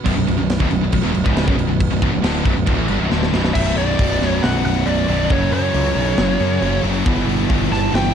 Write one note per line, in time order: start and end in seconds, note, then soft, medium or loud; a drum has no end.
0.00 3.52 D3 medium
0.00 3.51 B3 medium
0.00 3.52 F#4 medium
0.00 3.52 B4 medium
0.06 0.16 B0 medium
0.06 0.16 B1 medium
0.06 0.16 F#2 loud
0.06 kick loud
0.06 crash medium
0.17 0.27 B0 medium
0.17 0.27 B1 medium
0.17 0.27 F#2 medium
0.27 0.37 B0 medium
0.27 0.37 B1 medium
0.27 0.38 F#2 medium
0.27 crash medium
0.38 0.58 B0 medium
0.38 0.56 B1 medium
0.38 0.56 F#2 medium
0.50 snare loud
0.50 crash medium
0.60 0.70 D1 loud
0.60 0.70 D2 medium
0.60 0.71 A2 loud
0.60 kick loud
0.71 0.81 B0 medium
0.71 0.82 B1 medium
0.71 0.82 F#2 medium
0.71 crash medium
0.82 0.92 B0 medium
0.82 0.93 B1 medium
0.82 0.93 F#2 medium
0.92 1.03 B0 medium
0.92 1.04 B1 medium
0.92 1.04 F#2 medium
0.92 kick medium
0.92 crash medium
1.04 1.14 E1 loud
1.04 1.14 E2 loud
1.04 1.14 B2 loud
1.14 1.25 B0 medium
1.14 1.24 B1 medium
1.14 1.25 F#2 medium
1.14 crash medium
1.24 1.46 C#1 medium
1.24 1.46 C#2 medium
1.24 1.47 G#2 medium
1.24 1.47 C#3 loud
1.24 kick loud
1.36 snare loud
1.36 crash medium
1.47 1.58 F#1 loud
1.47 1.56 F#2 medium
1.47 1.57 C#3 loud
1.47 kick loud
1.58 1.69 B0 medium
1.58 1.66 B1 medium
1.58 1.67 F#2 medium
1.58 crash medium
1.68 1.90 B0 medium
1.68 1.86 B1 medium
1.68 1.86 F#2 medium
1.80 kick loud
1.80 crash medium
1.91 2.01 B0 medium
1.91 2.01 B1 medium
1.91 2.01 F#2 medium
2.02 2.12 B0 medium
2.02 2.11 B1 loud
2.02 2.12 F#2 loud
2.02 kick loud
2.02 crash medium
2.12 2.22 B0 medium
2.12 2.23 B1 medium
2.12 2.23 F#2 medium
2.22 2.43 D1 loud
2.22 2.44 D2 medium
2.22 2.45 A2 medium
2.22 2.45 D3 loud
2.22 snare loud
2.22 crash medium
2.45 2.55 B0 loud
2.45 2.55 B1 medium
2.45 2.55 F#2 medium
2.45 kick loud
2.45 crash medium
2.56 2.67 B0 medium
2.56 2.67 B1 medium
2.56 2.67 F#2 medium
2.66 2.77 D1 loud
2.66 2.77 D2 loud
2.66 2.76 A2 loud
2.66 kick loud
2.66 crash medium
2.77 2.89 A1 medium
2.77 2.88 A2 medium
2.77 2.88 E3 loud
2.88 3.00 G1 medium
2.88 2.99 G2 medium
2.88 3.00 D3 loud
2.88 crash medium
2.99 3.11 B0 medium
2.99 3.10 B1 medium
2.99 3.11 F#2 loud
3.11 3.32 D1 medium
3.11 3.31 D2 loud
3.11 3.32 A2 medium
3.11 3.32 D3 loud
3.11 snare medium
3.23 snare medium
3.32 3.53 B0 loud
3.32 3.54 B1 medium
3.32 3.54 F#2 medium
3.32 3.54 B2 loud
3.32 snare loud
3.45 snare medium
3.54 3.73 B0 loud
3.54 3.62 B1 medium
3.54 3.63 F#2 loud
3.54 3.97 B2 loud
3.54 3.75 E5 loud
3.54 kick loud
3.54 crash loud
3.63 3.69 B1 medium
3.63 3.71 F#2 medium
3.70 3.77 B1 medium
3.70 3.78 F#2 medium
3.76 3.94 B0 medium
3.76 3.86 B1 medium
3.76 3.85 F#2 medium
3.76 4.26 D5 loud
3.76 open hi-hat medium
3.86 3.93 B1 medium
3.86 3.93 F#2 medium
3.93 4.01 B1 medium
3.93 4.01 F#2 medium
3.99 4.17 B0 medium
3.99 4.08 B1 medium
3.99 4.08 F#2 medium
3.99 4.21 B2 medium
3.99 kick loud
3.99 open hi-hat loud
4.08 4.15 B1 medium
4.08 4.16 F#2 medium
4.16 4.22 B1 medium
4.16 4.24 F#2 medium
4.21 4.39 B0 loud
4.21 4.30 B1 medium
4.21 4.31 F#2 medium
4.21 4.42 B2 medium
4.21 snare soft
4.21 open hi-hat medium
4.26 4.45 C#5 loud
4.31 4.38 B1 medium
4.31 4.39 F#2 medium
4.39 4.61 B0 loud
4.39 4.45 B1 medium
4.39 4.46 F#2 medium
4.39 4.64 F#5 loud
4.39 open hi-hat medium
4.44 4.53 B1 medium
4.44 4.54 F#2 medium
4.44 4.86 B2 loud
4.44 snare loud
4.53 4.61 B1 medium
4.53 4.62 F#2 medium
4.61 4.82 B0 medium
4.61 4.69 B1 medium
4.61 4.68 F#2 medium
4.61 open hi-hat medium
4.66 4.77 B1 medium
4.66 4.76 F#2 medium
4.66 4.88 F#5 loud
4.77 4.83 B1 medium
4.77 4.84 F#2 medium
4.83 5.04 B0 medium
4.83 4.91 B1 medium
4.83 4.92 F#2 medium
4.83 5.07 B2 loud
4.83 5.31 D5 medium
4.83 open hi-hat medium
4.92 4.99 B1 medium
4.92 5.00 F#2 medium
5.00 5.06 B1 medium
5.00 5.07 F#2 medium
5.07 5.26 B0 loud
5.07 5.14 B1 medium
5.07 5.15 F#2 medium
5.07 5.29 B2 medium
5.07 open hi-hat medium
5.15 5.23 B1 medium
5.15 5.23 F#2 medium
5.23 5.31 B1 medium
5.23 5.31 F#2 medium
5.29 5.48 F#1 medium
5.29 5.38 F#2 medium
5.29 5.38 C#3 medium
5.29 5.73 F#3 loud
5.29 5.52 C#5 medium
5.29 kick loud
5.29 open hi-hat medium
5.38 5.46 F#2 medium
5.38 5.45 C#3 medium
5.46 5.54 F#2 medium
5.46 5.53 C#3 medium
5.51 5.70 F#2 medium
5.51 5.62 F#2 medium
5.51 5.61 C#3 medium
5.51 6.80 C#5 medium
5.51 open hi-hat medium
5.62 5.69 F#2 medium
5.62 5.69 C#3 medium
5.69 5.76 F#2 medium
5.69 5.77 C#3 medium
5.74 5.92 C#2 loud
5.74 5.84 F#2 medium
5.74 5.84 C#3 medium
5.74 5.96 F#3 loud
5.74 open hi-hat medium
5.85 5.92 F#2 medium
5.85 5.91 C#3 medium
5.91 5.99 F#2 medium
5.91 5.99 C#3 medium
5.95 6.13 B1 medium
5.95 6.07 F#2 medium
5.95 6.18 F#3 medium
5.95 open hi-hat medium
6.00 6.07 C#3 medium
6.08 6.15 F#2 medium
6.08 6.15 C#3 medium
6.15 6.36 F#1 loud
6.15 6.23 F#2 medium
6.15 6.23 C#3 medium
6.15 6.61 F#3 loud
6.15 snare loud
6.15 open hi-hat medium
6.23 6.29 F#2 medium
6.23 6.29 C#3 medium
6.29 6.37 F#2 medium
6.29 6.37 C#3 medium
6.38 6.45 F#2 medium
6.38 6.58 F#2 loud
6.38 6.45 C#3 medium
6.38 open hi-hat medium
6.46 6.53 F#2 medium
6.46 6.52 C#3 medium
6.52 6.60 F#2 medium
6.52 6.60 C#3 medium
6.60 6.79 F#1 loud
6.60 6.68 F#2 medium
6.60 6.66 C#3 medium
6.60 6.84 F#3 loud
6.60 open hi-hat medium
6.67 6.75 F#2 medium
6.67 6.74 C#3 medium
6.75 6.82 F#2 medium
6.75 6.82 C#3 medium
6.82 7.01 F#1 loud
6.82 6.90 F#2 medium
6.82 6.90 C#3 medium
6.82 7.05 F#3 medium
6.82 open hi-hat medium
6.90 6.99 F#2 medium
6.90 6.98 C#3 medium
6.98 7.05 F#2 medium
6.98 7.05 C#3 medium
7.05 7.24 G1 medium
7.05 7.13 E2 medium
7.05 7.13 B2 medium
7.05 7.49 E3 loud
7.05 kick loud
7.05 open hi-hat medium
7.13 7.20 E2 medium
7.13 7.20 B2 medium
7.21 7.28 E2 medium
7.21 7.28 B2 medium
7.27 7.45 G1 medium
7.27 7.35 E2 medium
7.27 7.36 B2 medium
7.27 open hi-hat medium
7.36 7.42 E2 medium
7.36 7.43 B2 medium
7.43 7.50 E2 medium
7.43 7.51 B2 medium
7.50 7.68 G1 medium
7.50 7.58 E2 medium
7.50 7.59 B2 medium
7.50 7.71 E3 medium
7.50 kick loud
7.50 open hi-hat medium
7.58 7.66 E2 medium
7.58 7.66 B2 medium
7.66 7.74 E2 medium
7.66 7.73 B2 medium
7.70 7.89 G1 loud
7.70 7.91 E2 medium
7.70 7.81 B2 medium
7.70 7.92 E3 loud
7.70 7.94 A5 loud
7.70 snare soft
7.70 open hi-hat medium
7.75 7.80 E2 medium
7.81 7.87 E2 medium
7.81 7.89 B2 medium
7.88 7.95 E2 medium
7.88 7.95 B2 medium
7.92 8.11 G1 medium
7.92 8.14 E2 loud
7.92 8.03 B2 medium
7.92 8.14 E3 loud
7.92 8.14 G5 medium
7.92 snare loud
7.92 open hi-hat medium
7.97 8.03 E2 medium
8.04 8.11 E2 medium
8.04 8.12 B2 medium